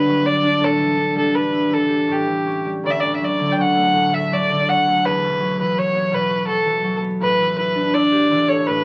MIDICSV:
0, 0, Header, 1, 3, 480
1, 0, Start_track
1, 0, Tempo, 741656
1, 396, Time_signature, 3, 2, 24, 8
1, 2322, Tempo, 726392
1, 5793, End_track
2, 0, Start_track
2, 0, Title_t, "Fiddle"
2, 0, Program_c, 0, 110
2, 0, Note_on_c, 0, 71, 68
2, 169, Note_on_c, 0, 74, 73
2, 179, Note_off_c, 0, 71, 0
2, 418, Note_on_c, 0, 69, 70
2, 428, Note_off_c, 0, 74, 0
2, 760, Note_off_c, 0, 69, 0
2, 764, Note_on_c, 0, 69, 60
2, 873, Note_on_c, 0, 71, 62
2, 883, Note_off_c, 0, 69, 0
2, 1123, Note_on_c, 0, 69, 60
2, 1133, Note_off_c, 0, 71, 0
2, 1370, Note_on_c, 0, 67, 60
2, 1380, Note_off_c, 0, 69, 0
2, 1728, Note_off_c, 0, 67, 0
2, 1850, Note_on_c, 0, 74, 67
2, 1881, Note_on_c, 0, 76, 56
2, 1890, Note_off_c, 0, 74, 0
2, 1942, Note_on_c, 0, 74, 68
2, 1952, Note_off_c, 0, 76, 0
2, 2040, Note_off_c, 0, 74, 0
2, 2044, Note_on_c, 0, 76, 49
2, 2102, Note_on_c, 0, 74, 64
2, 2112, Note_off_c, 0, 76, 0
2, 2276, Note_on_c, 0, 79, 53
2, 2285, Note_off_c, 0, 74, 0
2, 2337, Note_on_c, 0, 78, 74
2, 2347, Note_off_c, 0, 79, 0
2, 2690, Note_on_c, 0, 76, 65
2, 2700, Note_off_c, 0, 78, 0
2, 2814, Note_on_c, 0, 74, 74
2, 2823, Note_off_c, 0, 76, 0
2, 3051, Note_on_c, 0, 78, 72
2, 3061, Note_off_c, 0, 74, 0
2, 3292, Note_on_c, 0, 71, 74
2, 3302, Note_off_c, 0, 78, 0
2, 3649, Note_off_c, 0, 71, 0
2, 3657, Note_on_c, 0, 71, 64
2, 3773, Note_on_c, 0, 73, 75
2, 3783, Note_off_c, 0, 71, 0
2, 4012, Note_on_c, 0, 71, 74
2, 4022, Note_off_c, 0, 73, 0
2, 4226, Note_off_c, 0, 71, 0
2, 4230, Note_on_c, 0, 69, 71
2, 4565, Note_off_c, 0, 69, 0
2, 4726, Note_on_c, 0, 71, 83
2, 4945, Note_off_c, 0, 71, 0
2, 4960, Note_on_c, 0, 71, 75
2, 5201, Note_on_c, 0, 74, 78
2, 5211, Note_off_c, 0, 71, 0
2, 5557, Note_on_c, 0, 73, 70
2, 5567, Note_off_c, 0, 74, 0
2, 5682, Note_on_c, 0, 71, 74
2, 5691, Note_off_c, 0, 73, 0
2, 5793, Note_off_c, 0, 71, 0
2, 5793, End_track
3, 0, Start_track
3, 0, Title_t, "Harp"
3, 0, Program_c, 1, 46
3, 0, Note_on_c, 1, 43, 52
3, 0, Note_on_c, 1, 50, 53
3, 0, Note_on_c, 1, 55, 42
3, 0, Note_on_c, 1, 59, 50
3, 0, Note_on_c, 1, 62, 46
3, 0, Note_on_c, 1, 64, 41
3, 0, Note_on_c, 1, 66, 41
3, 41, Note_on_c, 1, 54, 45
3, 156, Note_off_c, 1, 59, 0
3, 158, Note_on_c, 1, 59, 41
3, 276, Note_off_c, 1, 62, 0
3, 279, Note_on_c, 1, 62, 41
3, 391, Note_on_c, 1, 45, 49
3, 428, Note_off_c, 1, 43, 0
3, 428, Note_off_c, 1, 50, 0
3, 428, Note_off_c, 1, 54, 0
3, 428, Note_off_c, 1, 55, 0
3, 512, Note_on_c, 1, 52, 37
3, 571, Note_off_c, 1, 64, 0
3, 628, Note_off_c, 1, 62, 0
3, 631, Note_on_c, 1, 62, 41
3, 746, Note_on_c, 1, 55, 38
3, 785, Note_off_c, 1, 66, 0
3, 866, Note_off_c, 1, 62, 0
3, 868, Note_on_c, 1, 62, 41
3, 985, Note_on_c, 1, 64, 37
3, 1093, Note_off_c, 1, 52, 0
3, 1101, Note_on_c, 1, 52, 47
3, 1217, Note_on_c, 1, 67, 36
3, 1335, Note_off_c, 1, 45, 0
3, 1342, Note_on_c, 1, 45, 51
3, 1383, Note_off_c, 1, 52, 0
3, 1383, Note_off_c, 1, 55, 0
3, 1467, Note_on_c, 1, 52, 35
3, 1591, Note_on_c, 1, 61, 34
3, 1629, Note_off_c, 1, 62, 0
3, 1717, Note_on_c, 1, 55, 34
3, 1835, Note_on_c, 1, 38, 46
3, 1873, Note_off_c, 1, 45, 0
3, 1873, Note_off_c, 1, 52, 0
3, 1873, Note_off_c, 1, 55, 0
3, 1873, Note_off_c, 1, 61, 0
3, 1959, Note_on_c, 1, 45, 34
3, 2082, Note_on_c, 1, 54, 36
3, 2121, Note_off_c, 1, 67, 0
3, 2168, Note_off_c, 1, 59, 0
3, 2193, Note_on_c, 1, 50, 36
3, 2235, Note_off_c, 1, 45, 0
3, 2235, Note_off_c, 1, 54, 0
3, 2311, Note_on_c, 1, 54, 42
3, 2429, Note_on_c, 1, 57, 39
3, 2548, Note_on_c, 1, 45, 46
3, 2597, Note_off_c, 1, 50, 0
3, 2677, Note_on_c, 1, 69, 40
3, 2682, Note_off_c, 1, 64, 0
3, 2794, Note_off_c, 1, 54, 0
3, 2801, Note_on_c, 1, 54, 44
3, 2927, Note_on_c, 1, 50, 40
3, 2958, Note_off_c, 1, 45, 0
3, 2958, Note_off_c, 1, 54, 0
3, 3046, Note_on_c, 1, 54, 39
3, 3167, Note_off_c, 1, 57, 0
3, 3170, Note_on_c, 1, 57, 39
3, 3289, Note_on_c, 1, 40, 52
3, 3322, Note_off_c, 1, 38, 0
3, 3322, Note_off_c, 1, 50, 0
3, 3322, Note_off_c, 1, 54, 0
3, 3411, Note_on_c, 1, 47, 37
3, 3523, Note_on_c, 1, 54, 42
3, 3650, Note_on_c, 1, 52, 38
3, 3754, Note_off_c, 1, 54, 0
3, 3762, Note_on_c, 1, 54, 42
3, 3878, Note_on_c, 1, 59, 39
3, 3984, Note_off_c, 1, 47, 0
3, 3992, Note_on_c, 1, 47, 52
3, 4030, Note_off_c, 1, 52, 0
3, 4110, Note_on_c, 1, 66, 43
3, 4129, Note_off_c, 1, 69, 0
3, 4223, Note_off_c, 1, 54, 0
3, 4231, Note_on_c, 1, 54, 45
3, 4350, Note_on_c, 1, 52, 44
3, 4460, Note_off_c, 1, 54, 0
3, 4468, Note_on_c, 1, 54, 44
3, 4587, Note_off_c, 1, 59, 0
3, 4589, Note_on_c, 1, 59, 43
3, 4711, Note_on_c, 1, 45, 52
3, 4745, Note_off_c, 1, 40, 0
3, 4745, Note_off_c, 1, 47, 0
3, 4745, Note_off_c, 1, 52, 0
3, 4745, Note_off_c, 1, 54, 0
3, 4838, Note_on_c, 1, 52, 45
3, 4961, Note_on_c, 1, 64, 47
3, 5073, Note_on_c, 1, 62, 45
3, 5195, Note_off_c, 1, 64, 0
3, 5198, Note_on_c, 1, 64, 50
3, 5317, Note_on_c, 1, 67, 47
3, 5357, Note_off_c, 1, 66, 0
3, 5369, Note_off_c, 1, 57, 0
3, 5434, Note_off_c, 1, 52, 0
3, 5442, Note_on_c, 1, 52, 54
3, 5560, Note_on_c, 1, 69, 43
3, 5673, Note_off_c, 1, 45, 0
3, 5681, Note_on_c, 1, 45, 55
3, 5714, Note_off_c, 1, 52, 0
3, 5793, Note_off_c, 1, 45, 0
3, 5793, Note_off_c, 1, 59, 0
3, 5793, Note_off_c, 1, 62, 0
3, 5793, Note_off_c, 1, 64, 0
3, 5793, Note_off_c, 1, 67, 0
3, 5793, Note_off_c, 1, 69, 0
3, 5793, End_track
0, 0, End_of_file